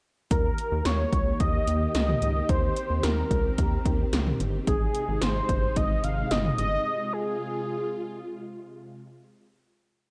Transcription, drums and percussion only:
0.31 kick loud
0.31 closed hi-hat medium
0.58 closed hi-hat medium
0.85 snare loud
0.85 closed hi-hat medium
1.13 kick medium
1.13 closed hi-hat medium
1.40 kick medium
1.40 closed hi-hat medium
1.67 closed hi-hat medium
1.95 snare loud
1.95 closed hi-hat medium
2.08 mid tom medium
2.22 closed hi-hat medium
2.49 kick loud
2.49 closed hi-hat medium
2.76 closed hi-hat medium
3.03 snare loud
3.03 closed hi-hat medium
3.31 kick medium
3.31 closed hi-hat medium
3.58 kick medium
3.58 closed hi-hat medium
3.85 kick medium
3.85 closed hi-hat medium
4.13 snare loud
4.13 closed hi-hat medium
4.27 mid tom medium
4.40 closed hi-hat medium
4.67 kick loud
4.67 closed hi-hat medium
4.95 closed hi-hat medium
5.22 snare loud
5.22 closed hi-hat medium
5.49 kick medium
5.49 closed hi-hat medium
5.76 kick medium
5.76 closed hi-hat medium
6.04 closed hi-hat medium
6.31 snare loud
6.31 closed hi-hat medium
6.45 mid tom medium
6.58 closed hi-hat medium

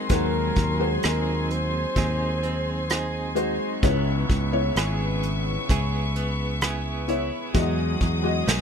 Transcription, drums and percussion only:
0.09 kick medium
0.09 closed hi-hat medium
0.56 kick medium
0.56 closed hi-hat soft
1.03 cross-stick medium
1.03 closed hi-hat medium
1.50 closed hi-hat soft
1.96 kick medium
1.96 closed hi-hat medium
2.43 closed hi-hat soft
2.90 cross-stick medium
2.90 closed hi-hat medium
3.36 closed hi-hat soft
3.83 kick medium
3.83 closed hi-hat medium
4.30 kick medium
4.30 closed hi-hat soft
4.76 cross-stick medium
4.76 closed hi-hat medium
5.23 closed hi-hat soft
5.69 kick medium
5.69 closed hi-hat medium
6.16 closed hi-hat soft
6.61 cross-stick medium
6.61 closed hi-hat medium
7.08 closed hi-hat soft
7.54 kick medium
7.54 closed hi-hat medium
8.00 kick medium
8.00 closed hi-hat soft
8.47 snare medium
8.47 closed hi-hat medium

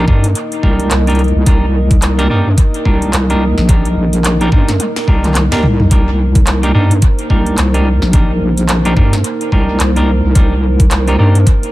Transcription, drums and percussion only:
0.08 kick loud
0.24 closed hi-hat medium
0.35 closed hi-hat medium
0.52 closed hi-hat soft
0.63 kick medium
0.80 closed hi-hat soft
0.91 clap loud
0.91 closed hi-hat medium
1.07 closed hi-hat soft
1.10 closed hi-hat soft
1.15 closed hi-hat soft
1.19 closed hi-hat soft
1.24 closed hi-hat soft
1.28 closed hi-hat soft
1.46 kick loud
1.46 closed hi-hat medium
1.91 kick loud
1.91 closed hi-hat medium
2.02 clap loud
2.02 closed hi-hat medium
2.19 closed hi-hat soft
2.58 kick loud
2.58 closed hi-hat medium
2.74 closed hi-hat soft
2.85 kick medium
3.02 closed hi-hat soft
3.13 clap loud
3.13 closed hi-hat medium
3.30 closed hi-hat soft
3.58 snare medium
3.69 kick loud
3.69 closed hi-hat medium
3.85 closed hi-hat soft
4.13 closed hi-hat medium
4.24 clap loud
4.24 closed hi-hat medium
4.41 closed hi-hat soft
4.52 kick loud
4.68 snare medium
4.68 closed hi-hat medium
4.80 closed hi-hat medium
4.80 high tom medium
4.96 snare medium
4.96 closed hi-hat soft
5.08 kick medium
5.24 clap soft
5.24 closed hi-hat soft
5.24 mid tom medium
5.26 clap soft
5.32 clap soft
5.35 clap loud
5.35 closed hi-hat medium
5.35 mid tom medium
5.52 snare medium
5.52 closed hi-hat soft
5.63 mid tom loud
5.80 mid tom medium
5.91 kick loud
5.91 closed hi-hat medium
6.35 kick loud
6.35 closed hi-hat medium
6.47 clap loud
6.47 closed hi-hat medium
6.63 closed hi-hat soft
6.91 closed hi-hat medium
7.02 kick loud
7.02 closed hi-hat medium
7.19 closed hi-hat soft
7.30 kick medium
7.46 closed hi-hat soft
7.58 clap loud
7.58 closed hi-hat medium
7.74 closed hi-hat soft
8.02 snare medium
8.13 kick loud
8.13 closed hi-hat medium
8.57 closed hi-hat medium
8.69 clap loud
8.69 closed hi-hat medium
8.85 closed hi-hat soft
8.97 kick loud
9.13 snare medium
9.13 closed hi-hat medium
9.24 closed hi-hat medium
9.41 closed hi-hat soft
9.52 kick medium
9.80 clap loud
9.80 closed hi-hat medium
9.96 closed hi-hat soft
10.35 kick loud
10.35 closed hi-hat medium
10.80 kick loud
10.80 closed hi-hat medium
10.91 clap loud
10.91 closed hi-hat medium
11.08 closed hi-hat soft
11.35 closed hi-hat medium
11.47 kick loud
11.47 closed hi-hat medium
11.63 closed hi-hat soft

